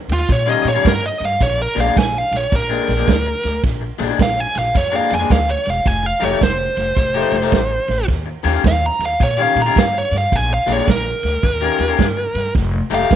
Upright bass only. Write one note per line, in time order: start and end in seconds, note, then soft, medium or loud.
0.08 0.22 D#2 medium
0.29 0.53 A#2 medium
0.65 0.78 A#2 medium
0.85 1.09 G2 medium
1.20 1.34 G2 medium
1.40 1.64 A#1 loud
1.76 1.90 A#1 medium
1.97 2.20 A#1 medium
2.31 2.45 A#1 medium
2.52 2.76 A#1 medium
2.88 3.02 A#1 medium
3.08 3.32 D2 medium
3.44 3.58 D2 medium
3.64 3.87 A#1 medium
4.00 4.13 A#1 medium
4.19 4.43 A#1 medium
4.56 4.69 A#1 medium
4.75 4.99 F2 medium
5.12 5.25 F2 medium
5.30 5.54 D2 medium
5.67 5.80 E1 medium
5.86 6.10 F1 medium
6.22 6.36 F1 medium
6.41 6.65 F1 medium
6.77 6.91 F1 medium
6.97 7.21 F1 medium
7.32 7.46 F1 medium
7.52 7.76 A1 medium
7.88 8.02 A1 medium
8.09 8.33 D#2 loud
8.44 8.58 D#2 medium
8.64 8.88 D#2 loud
8.99 9.13 D#2 medium
9.20 9.44 A#2 medium
9.55 9.69 A#2 medium
9.76 10.00 G2 medium
10.11 10.25 G2 medium
10.32 10.56 A#1 loud
10.67 10.81 A#1 medium
10.87 11.12 A#1 loud
11.23 11.37 D2 medium
11.43 11.67 D#2 medium
11.79 11.93 D#2 medium
11.99 12.23 G2 medium
12.35 12.49 G2 medium
12.55 12.79 F1 loud
12.90 13.04 F1 medium
13.11 13.16 F1 loud